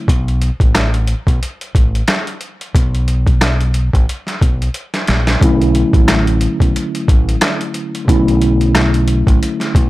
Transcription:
0.08 0.49 B1 loud
0.08 kick loud
0.08 closed hi-hat medium
0.28 closed hi-hat soft
0.42 closed hi-hat medium
0.60 1.13 A1 loud
0.60 kick medium
0.60 closed hi-hat soft
0.75 cross-stick medium
0.75 snare loud
0.75 closed hi-hat medium
0.94 closed hi-hat medium
1.07 closed hi-hat medium
1.27 1.38 B1 medium
1.27 kick medium
1.27 closed hi-hat medium
1.43 closed hi-hat medium
1.61 closed hi-hat medium
1.75 2.01 A1 medium
1.75 kick medium
1.75 closed hi-hat medium
1.95 closed hi-hat medium
2.08 cross-stick medium
2.08 snare loud
2.08 closed hi-hat medium
2.27 closed hi-hat medium
2.41 closed hi-hat medium
2.61 closed hi-hat medium
2.75 3.90 B1 loud
2.75 kick loud
2.75 closed hi-hat loud
2.95 closed hi-hat soft
3.08 closed hi-hat medium
3.27 kick medium
3.27 closed hi-hat soft
3.41 cross-stick medium
3.41 snare loud
3.41 closed hi-hat medium
3.61 closed hi-hat medium
3.74 closed hi-hat medium
3.93 4.05 A1 medium
3.93 kick medium
3.93 closed hi-hat medium
4.09 closed hi-hat medium
4.27 snare soft
4.27 closed hi-hat medium
4.42 4.68 B1 medium
4.42 kick loud
4.42 closed hi-hat medium
4.62 closed hi-hat medium
4.74 closed hi-hat medium
4.94 snare medium
4.94 closed hi-hat medium
5.07 5.35 A#1 medium
5.07 snare medium
5.07 closed hi-hat medium
5.27 snare medium
5.27 closed hi-hat medium
5.40 5.82 B1 loud
5.40 8.03 D3 medium
5.40 8.04 F#3 medium
5.40 8.04 A3 medium
5.40 8.05 C#4 medium
5.40 kick loud
5.40 closed hi-hat loud
5.44 8.05 E4 medium
5.62 closed hi-hat soft
5.75 closed hi-hat medium
5.93 6.46 A1 loud
5.93 kick loud
5.93 closed hi-hat soft
6.08 finger snap medium
6.08 cross-stick loud
6.08 snare loud
6.08 closed hi-hat medium
6.27 closed hi-hat medium
6.41 closed hi-hat medium
6.60 6.72 B1 loud
6.60 kick medium
6.60 closed hi-hat medium
6.76 closed hi-hat medium
6.95 closed hi-hat medium
7.08 7.35 A1 medium
7.08 kick loud
7.08 closed hi-hat medium
7.29 closed hi-hat medium
7.41 finger snap medium
7.41 cross-stick medium
7.41 snare loud
7.41 closed hi-hat medium
7.61 closed hi-hat medium
7.74 closed hi-hat medium
7.95 closed hi-hat medium
8.05 9.23 B1 loud
8.05 9.90 D3 medium
8.05 9.90 F#3 medium
8.05 9.90 A3 medium
8.05 9.90 C#4 medium
8.05 kick loud
8.09 9.90 E4 medium
8.09 closed hi-hat loud
8.28 closed hi-hat soft
8.41 closed hi-hat medium
8.61 closed hi-hat medium
8.75 finger snap medium
8.75 cross-stick loud
8.75 snare loud
8.75 closed hi-hat medium
8.94 closed hi-hat medium
9.08 closed hi-hat medium
9.27 9.39 A1 medium
9.27 kick medium
9.27 closed hi-hat medium
9.43 closed hi-hat medium
9.60 snare soft
9.60 closed hi-hat medium
9.75 9.90 B1 medium
9.75 kick loud
9.75 closed hi-hat medium

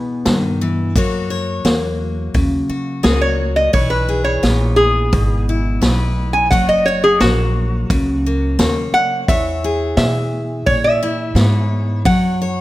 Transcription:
0.00 0.91 B2 medium
0.00 0.25 E3 medium
0.00 0.91 B3 medium
0.00 0.91 G#4 medium
0.00 0.91 B4 medium
0.25 0.93 G2 loud
0.25 0.60 D#3 medium
0.25 snare loud
0.25 open hi-hat soft
0.61 0.96 E3 medium
0.95 1.63 F#2 medium
0.95 3.69 F#3 medium
0.95 1.64 A#3 medium
0.95 2.68 F#4 medium
0.95 1.29 C#5 medium
0.95 kick loud
0.95 open hi-hat medium
1.30 3.69 C#5 medium
1.65 2.32 E2 loud
1.65 3.02 A#3 medium
1.65 snare loud
1.65 open hi-hat medium
2.34 2.67 D#2 medium
2.34 3.69 C#3 medium
2.34 kick loud
2.34 open hi-hat medium
2.69 3.03 F#4 medium
2.69 muted upright bass stroke soft
3.03 3.71 C#2 loud
3.03 3.69 A#3 medium
3.03 3.69 F#4 medium
3.03 3.20 G#4 medium
3.03 snare loud
3.03 open hi-hat medium
3.21 3.55 C#5 loud
3.56 3.73 D#5 loud
3.73 4.41 B1 medium
3.73 6.47 E3 medium
3.73 5.82 B4 medium
3.73 3.90 C#5 loud
3.73 kick loud
3.73 open hi-hat medium
3.90 4.24 B4 loud
4.09 6.47 G#4 medium
4.24 4.75 C#5 loud
4.43 5.10 A#1 loud
4.43 5.80 B3 medium
4.43 snare loud
4.43 open hi-hat medium
4.76 5.44 G#4 loud
5.13 5.80 G#1 loud
5.13 6.47 B2 medium
5.13 kick loud
5.13 open hi-hat medium
5.49 6.48 E4 medium
5.81 6.49 B1 loud
5.81 6.47 B3 medium
5.81 6.47 B4 medium
5.81 snare loud
5.81 open hi-hat medium
6.33 6.50 G#5 loud
6.51 7.18 F#1 medium
6.51 9.25 F#3 medium
6.51 8.59 C#5 medium
6.51 6.67 F#5 medium
6.51 kick loud
6.51 open hi-hat medium
6.69 6.85 D#5 loud
6.86 9.25 F#4 medium
6.86 7.02 C#5 medium
7.04 7.20 G#4 loud
7.20 7.87 A#1 loud
7.20 8.25 A#3 medium
7.20 8.55 F#4 loud
7.20 snare loud
7.20 open hi-hat medium
7.90 8.57 C#2 loud
7.90 9.24 C#3 medium
7.90 kick loud
7.90 open hi-hat medium
8.26 8.58 A#3 medium
8.59 8.91 D#2 loud
8.59 9.24 A#3 medium
8.59 9.30 C#5 medium
8.59 snare loud
8.59 open hi-hat medium
8.93 9.27 F#5 loud
8.93 muted upright bass stroke soft
9.28 9.95 E2 medium
9.28 12.01 E3 medium
9.28 11.36 C#5 medium
9.28 9.95 E5 loud
9.28 kick loud
9.28 open hi-hat medium
9.64 12.02 G#4 medium
9.97 10.64 B2 loud
9.97 10.64 E5 loud
9.97 snare loud
9.97 open hi-hat medium
10.66 11.34 A#2 medium
10.66 10.83 C#5 loud
10.66 kick loud
10.66 open hi-hat medium
10.84 12.02 E5 loud
11.03 12.02 E4 medium
11.35 12.03 G#2 loud
11.35 12.01 B3 medium
11.35 12.06 C#5 medium
11.35 snare loud
11.35 open hi-hat medium
12.05 12.61 F#2 medium
12.05 12.61 F#3 medium
12.05 12.40 C#5 medium
12.05 12.61 F#5 loud
12.05 kick loud
12.05 open hi-hat medium
12.42 12.61 C#5 medium

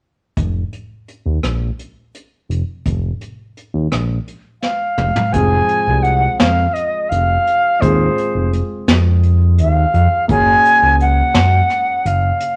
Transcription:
0.37 0.64 F1 medium
0.37 kick medium
0.37 closed hi-hat medium
0.73 closed hi-hat soft
1.08 closed hi-hat soft
1.26 1.39 D#2 medium
1.43 1.70 A#1 medium
1.43 cross-stick medium
1.43 closed hi-hat medium
1.79 closed hi-hat soft
2.15 closed hi-hat medium
2.49 2.63 F1 medium
2.49 closed hi-hat medium
2.85 3.12 F1 medium
2.85 kick medium
2.85 closed hi-hat medium
3.21 closed hi-hat soft
3.57 closed hi-hat soft
3.74 3.88 D#2 medium
3.92 4.19 A#1 medium
3.92 cross-stick medium
3.92 closed hi-hat medium
4.28 closed hi-hat soft
4.62 5.34 F5 medium
4.62 snare soft
4.98 5.12 F1 medium
4.98 mid tom medium
5.16 floor tom medium
5.32 5.61 F1 loud
5.32 7.78 F3 soft
5.32 7.77 G#3 soft
5.32 7.77 C4 soft
5.32 7.78 G#4 medium
5.32 6.04 G#5 medium
5.32 kick medium
5.32 closed hi-hat medium
5.69 closed hi-hat medium
5.87 6.28 C2 loud
6.03 6.38 F#5 medium
6.03 closed hi-hat soft
6.39 6.67 F2 medium
6.39 6.75 F5 medium
6.39 snare medium
6.39 closed hi-hat medium
6.74 7.11 D#5 medium
6.74 closed hi-hat soft
7.09 7.38 F1 medium
7.09 7.83 F5 medium
7.09 closed hi-hat medium
7.47 closed hi-hat medium
7.79 8.09 D#2 medium
7.79 10.24 G#3 medium
7.79 10.24 C4 soft
7.79 10.25 F4 soft
7.79 10.25 G#4 medium
7.79 8.52 C5 medium
7.79 kick loud
7.79 closed hi-hat medium
8.18 closed hi-hat medium
8.35 8.62 F1 medium
8.53 closed hi-hat medium
8.88 9.60 F2 medium
8.88 snare medium
8.88 closed hi-hat medium
9.23 closed hi-hat soft
9.58 9.85 D#2 medium
9.58 10.26 F5 medium
9.58 closed hi-hat medium
9.94 10.07 F2 medium
9.94 closed hi-hat medium
10.28 10.56 F#1 loud
10.28 12.56 A#3 medium
10.28 12.56 C#4 medium
10.28 12.56 F#4 medium
10.28 12.56 G#4 medium
10.28 10.96 G#5 loud
10.28 kick loud
10.28 closed hi-hat medium
10.65 closed hi-hat medium
10.82 11.22 C#2 loud
11.00 12.08 F#5 medium
11.00 closed hi-hat soft
11.34 11.61 F#2 medium
11.34 snare medium
11.34 closed hi-hat medium
11.70 snare soft
11.70 closed hi-hat soft
12.05 12.32 F#1 medium
12.05 12.56 F5 medium
12.05 closed hi-hat medium
12.40 closed hi-hat medium

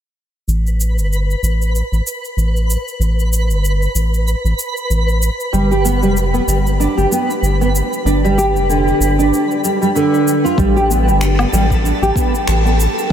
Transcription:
0.48 0.99 A1 medium
0.48 10.60 B4 medium
0.48 shaker soft
0.67 shaker soft
0.80 shaker medium
0.97 1.35 G1 medium
0.97 shaker soft
1.13 shaker soft
1.31 shaker soft
1.43 1.82 A1 medium
1.43 shaker medium
1.62 shaker soft
1.75 shaker soft
1.92 2.01 A1 medium
1.92 shaker soft
2.07 shaker medium
2.25 shaker soft
2.37 2.77 A1 medium
2.37 shaker soft
2.56 shaker soft
2.70 shaker medium
2.88 shaker soft
2.99 3.51 A1 medium
2.99 shaker soft
3.19 shaker soft
3.33 shaker medium
3.50 3.88 G1 medium
3.50 shaker soft
3.65 shaker soft
3.82 shaker soft
3.95 4.35 A1 medium
3.95 shaker medium
4.14 shaker soft
4.28 shaker soft
4.44 4.53 A1 medium
4.44 shaker soft
4.59 shaker medium
4.77 shaker soft
4.90 5.29 A1 medium
4.90 shaker soft
5.09 shaker soft
5.22 shaker medium
5.40 shaker soft
5.53 6.04 G1 medium
5.53 5.69 G3 medium
5.53 shaker soft
5.71 5.83 G4 medium
5.71 shaker soft
5.85 6.02 B3 medium
5.85 shaker medium
6.03 6.40 F1 loud
6.03 6.16 G3 medium
6.03 shaker soft
6.17 shaker soft
6.34 6.42 B3 medium
6.34 shaker soft
6.47 6.87 G1 medium
6.47 6.58 G3 medium
6.47 shaker medium
6.67 shaker soft
6.80 6.96 D4 medium
6.80 shaker soft
6.97 7.06 G1 medium
6.97 7.10 G4 medium
6.97 shaker soft
7.11 7.28 B3 medium
7.11 shaker medium
7.30 shaker soft
7.42 7.82 G1 medium
7.42 shaker soft
7.61 7.69 B3 medium
7.61 shaker soft
7.75 shaker medium
7.93 shaker soft
8.05 8.56 G1 medium
8.05 8.22 D4 medium
8.05 shaker soft
8.25 8.37 G3 medium
8.25 shaker soft
8.38 8.68 G4 medium
8.38 shaker medium
8.55 8.93 F1 loud
8.55 shaker soft
8.69 9.17 D3 medium
8.69 shaker soft
8.88 shaker soft
9.00 9.32 G1 medium
9.00 shaker medium
9.19 9.62 D4 medium
9.19 shaker soft
9.34 shaker soft
9.51 shaker soft
9.64 9.80 G3 medium
9.64 shaker medium
9.82 9.89 G3 medium
9.82 shaker soft
9.95 10.43 D3 medium
9.95 shaker soft
10.14 shaker soft
10.28 shaker medium
10.45 10.57 F4 medium
10.45 shaker soft
10.58 11.10 A1 medium
10.58 10.75 G3 medium
10.58 13.12 A4 medium
10.58 kick loud
10.58 shaker soft
10.76 10.89 G4 medium
10.76 shaker soft
10.90 11.07 B3 medium
10.90 shaker medium
11.08 11.46 G1 loud
11.08 11.21 G3 medium
11.08 shaker soft
11.21 finger snap loud
11.21 shaker soft
11.39 11.47 B3 medium
11.39 low woodblock medium
11.39 shaker soft
11.53 11.92 A1 medium
11.53 11.63 G3 medium
11.53 shaker medium
11.70 kick medium
11.70 shaker soft
11.84 12.00 D4 medium
11.84 shaker soft
12.02 12.11 A1 medium
12.02 12.15 G4 medium
12.02 shaker soft
12.16 12.33 B3 medium
12.16 kick loud
12.16 shaker medium
12.35 shaker soft
12.48 12.87 A1 medium
12.48 finger snap loud
12.48 shaker soft
12.65 12.73 B3 medium
12.65 shaker soft
12.80 shaker medium
12.99 shaker soft

